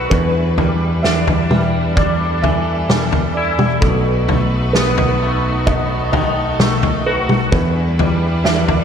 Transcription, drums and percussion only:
0.11 kick medium
0.11 floor tom medium
0.58 floor tom medium
1.04 snare medium
1.27 floor tom medium
1.51 mid tom medium
1.97 kick medium
1.97 floor tom medium
2.44 floor tom medium
2.90 snare medium
2.90 mid tom medium
3.12 floor tom medium
3.59 mid tom medium
3.82 kick medium
3.82 floor tom medium
4.29 floor tom medium
4.75 snare medium
4.98 floor tom medium
5.67 kick medium
5.67 floor tom medium
6.13 floor tom medium
6.60 snare medium
6.60 mid tom medium
6.83 floor tom medium
7.29 mid tom medium
7.52 kick medium
7.52 floor tom medium
7.99 floor tom medium
8.45 snare medium
8.68 floor tom medium

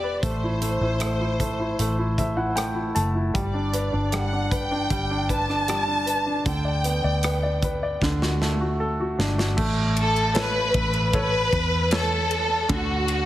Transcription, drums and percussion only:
0.23 kick medium
0.23 closed hi-hat medium
0.62 closed hi-hat medium
1.00 cross-stick medium
1.00 closed hi-hat medium
1.40 kick medium
1.40 closed hi-hat medium
1.79 closed hi-hat medium
2.18 kick medium
2.18 closed hi-hat soft
2.57 cross-stick medium
2.57 closed hi-hat medium
2.96 closed hi-hat medium
3.35 kick medium
3.35 closed hi-hat medium
3.74 closed hi-hat medium
4.12 cross-stick medium
4.12 closed hi-hat medium
4.51 kick medium
4.51 closed hi-hat medium
4.90 kick medium
4.90 closed hi-hat medium
5.29 kick medium
5.29 closed hi-hat soft
5.50 cross-stick soft
5.68 cross-stick medium
5.68 closed hi-hat medium
6.07 closed hi-hat medium
6.46 kick medium
6.46 closed hi-hat medium
6.84 closed hi-hat medium
7.23 cross-stick medium
7.23 closed hi-hat medium
7.62 kick medium
7.62 closed hi-hat medium
8.02 kick medium
8.02 snare soft
8.22 snare soft
8.42 snare medium
9.20 snare medium
9.39 snare medium
9.58 kick loud
9.58 crash medium
9.97 ride medium
10.16 ride soft
10.35 snare loud
10.35 ride medium
10.74 kick medium
10.74 ride medium
10.93 ride soft
11.13 kick medium
11.13 ride medium
11.53 kick medium
11.53 ride soft
11.91 snare loud
11.91 ride medium
12.31 ride medium
12.69 kick loud
12.69 ride medium
13.08 ride medium

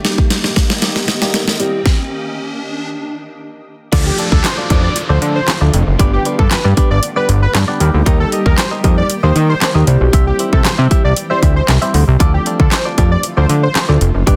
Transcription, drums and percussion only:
0.05 snare medium
0.05 closed hi-hat medium
0.18 kick medium
0.30 snare loud
0.30 closed hi-hat medium
0.44 snare loud
0.56 kick medium
0.56 snare loud
0.56 closed hi-hat medium
0.70 snare loud
0.82 snare loud
0.82 closed hi-hat medium
0.96 snare loud
1.08 snare loud
1.08 closed hi-hat medium
1.22 snare loud
1.34 snare loud
1.34 closed hi-hat medium
1.48 snare loud
1.60 closed hi-hat medium
1.86 kick loud
1.86 snare medium
3.93 kick loud
3.93 closed hi-hat loud
3.93 crash loud
4.18 closed hi-hat medium
4.32 kick medium
4.44 snare loud
4.44 clap loud
4.44 closed hi-hat medium
4.70 kick loud
4.70 closed hi-hat medium
4.96 closed hi-hat loud
5.22 closed hi-hat medium
5.48 snare medium
5.48 clap loud
5.48 closed hi-hat medium
5.74 closed hi-hat medium
5.99 kick loud
5.99 closed hi-hat loud
6.25 closed hi-hat medium
6.39 kick medium
6.51 snare loud
6.51 clap loud
6.51 closed hi-hat medium
6.77 kick loud
6.77 closed hi-hat medium
7.03 closed hi-hat loud
7.29 closed hi-hat medium
7.55 snare medium
7.55 clap loud
7.55 closed hi-hat loud
7.80 closed hi-hat medium
8.06 kick loud
8.06 closed hi-hat loud
8.32 closed hi-hat medium
8.46 kick loud
8.58 snare loud
8.58 clap loud
8.58 closed hi-hat medium
8.84 kick loud
8.84 closed hi-hat medium
9.10 closed hi-hat loud
9.36 closed hi-hat medium
9.61 snare medium
9.61 clap loud
9.61 closed hi-hat loud
9.87 closed hi-hat medium
10.13 kick loud
10.13 closed hi-hat loud
10.39 closed hi-hat medium
10.53 kick loud
10.65 snare loud
10.65 clap loud
10.65 closed hi-hat medium
10.91 kick medium
10.91 closed hi-hat medium
11.16 closed hi-hat loud
11.43 kick medium
11.43 closed hi-hat medium
11.68 snare medium
11.68 clap loud
11.68 closed hi-hat medium
11.82 closed hi-hat medium
11.94 open hi-hat medium
12.20 kick loud
12.20 closed hi-hat loud
12.46 closed hi-hat medium
12.60 kick medium
12.72 snare loud
12.72 clap loud
12.72 closed hi-hat medium
12.98 kick medium
12.98 closed hi-hat medium
13.23 closed hi-hat loud
13.49 closed hi-hat medium
13.75 snare medium
13.75 clap loud
13.75 closed hi-hat medium
14.01 closed hi-hat medium
14.27 kick loud
14.27 closed hi-hat loud

